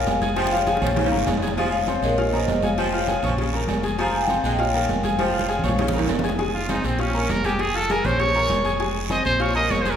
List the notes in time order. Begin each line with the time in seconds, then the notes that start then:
Already playing: D#3 A#3 A#4 A#5
0.06 F1 F5 G#5, cowbell, high conga, low timbale, short guiro
0.21 G#4 G#5 G#6, cowbell, high conga, low agogo, short guiro
0.36 F3 C5 G5, cowbell, high bongo, high conga, low agogo, long guiro
0.47 high bongo
0.52 F4 C#5 F5 F6, high conga
0.57 high bongo
0.67 G#3 G#4 G#5, cowbell, high conga, low timbale, low agogo, short guiro
0.77 high bongo
0.81 A#1 F3 C#4 C#5 C#6, cowbell, high conga, low conga, low agogo, short guiro
0.87 high bongo
0.96 C#3, cowbell, low bongo, high conga, low conga, high timbale, long guiro
1.06 low bongo, high timbale
1.11 G1 A#3 A#4 A#5, high conga, low agogo
1.17 low bongo, high timbale
1.27 F1, cowbell, low bongo, high conga, low timbale, low agogo, short guiro
1.37 low timbale
1.42 G#4 G#5 G#6, cowbell, short guiro
1.47 low bongo, low timbale
1.57 F3 G#3 G#4 F5 G#5, cowbell, high conga, low agogo, long guiro
1.72 C#5 F5, high conga
1.87 C4 C5 C6, cowbell, high conga, low timbale, low agogo, short guiro
2.02 A#1 G#3 A#4 C#5, high conga, short guiro
2.18 F4 F5 F6, cowbell, high conga, low agogo, long guiro
2.33 D#3 A#3 A#4 C5 D#5 A#5, high conga, low agogo
2.48 F1, cowbell, high conga, low timbale, short guiro
2.63 G#4 C#5 F5 G#5 G#6, cowbell, high conga, low agogo, short guiro
2.78 F3 C5 G5, cowbell, high conga, low agogo, long guiro
2.93 F4 C#5 F5 F6, high conga
3.08 G#3 G#4 G#5, cowbell, high conga, low timbale, low agogo, short guiro
3.23 A#1 F3 C#4 C#5 C#6, cowbell, high conga, low conga, low agogo, short guiro
3.38 C#3, cowbell, high conga, low conga, long guiro
3.53 A#3 A#4 A#5, high conga, low agogo
3.68 F1, cowbell, high conga, low timbale, low agogo, short guiro
3.83 G#4 G#5 G#6, cowbell, high conga, short guiro
3.98 F3 G#3 G#4 F5 G#5 A#5, cowbell, high conga, low agogo, long guiro
4.13 F5 G#5, high conga
4.21 G5
4.28 C4 C5 F5 G#5 C6, cowbell, high conga, low timbale, low agogo, short guiro
4.43 A#1 G#3 D#5 G5, high conga, short guiro
4.59 F4 C#5 F5 F6, cowbell, high conga, low agogo, long guiro
4.74 D#3 A#3 A#4 A#5, high conga, low agogo
4.89 F1 F5 G#5, cowbell, high conga, low timbale, short guiro
5.03 G#4 G#5 G#6, cowbell, high conga, low agogo, short guiro
5.18 F3 C5 G5, cowbell, high conga, low agogo, long guiro
5.29 high conga
5.33 F4 C#5 F5 F6
5.39 high conga
5.48 G#3 G#4 G#5, cowbell, low timbale, low agogo, short guiro
5.59 low conga
5.64 A#1 F3 C#4 C#5 C#6, cowbell, low agogo, short guiro
5.69 high conga
5.79 C#3, cowbell, high bongo, low conga, high timbale, long guiro
5.88 high bongo, low conga
5.94 A#3 A#4 A#5, low agogo
5.99 low conga, high timbale
6.08 F1, cowbell, low bongo, low timbale, low agogo, short guiro
6.19 low bongo, low conga, low timbale
6.24 G#4 G#5 G#6, cowbell, short guiro
6.29 low bongo, low conga, low timbale
6.39 G#3 G#4 G#5, cowbell, high conga, low agogo, long guiro
6.54 F4, high conga
6.69 C4 D#4 C5 C6, cowbell, high conga, low timbale, low agogo, short guiro
6.84 A#1 C4, high conga, short guiro
6.99 C#4 F4 F5 F6, cowbell, high conga, low agogo, long guiro
7.14 A#3 A#4 A#5, high conga, low agogo
7.29 F1 A#4, cowbell, high conga, low timbale, short guiro
7.44 G4 G#4 G#5 G#6, cowbell, high conga, low agogo, short guiro
7.59 G#4, cowbell, high conga, low agogo, long guiro
7.74 F4 A4 F5 F6, high conga
7.90 G#3 G#4 A#4 G#5, cowbell, high conga, low timbale, low agogo, short guiro
8.05 A#1 C#4 C5 C#5 C#6, cowbell, high conga, low conga, low agogo, short guiro
8.20 C#5, cowbell, high conga, low conga, long guiro
8.35 A#3 A#4 A#5, high conga, low agogo
8.50 F1, cowbell, high conga, low timbale, low agogo, short guiro
8.65 G#4 G#5 G#6, cowbell, short guiro
8.80 G#3 G#4 G#5, cowbell, high conga, low agogo, long guiro
8.95 high conga
9.10 C4 C5 D#5 C6, cowbell, high conga, low timbale, low agogo, short guiro
9.25 A#1 C5, high conga, short guiro
9.40 F4 C#5 F5 F6, cowbell, high conga, low agogo, long guiro
9.55 A#3 A#4 D#5 A#5, high conga, low agogo
9.70 F1 C#5, cowbell, high conga, low timbale, short guiro
9.82 G#4 C5 G#5, high conga, short guiro
9.86 G#6, cowbell, low agogo
9.91 A#4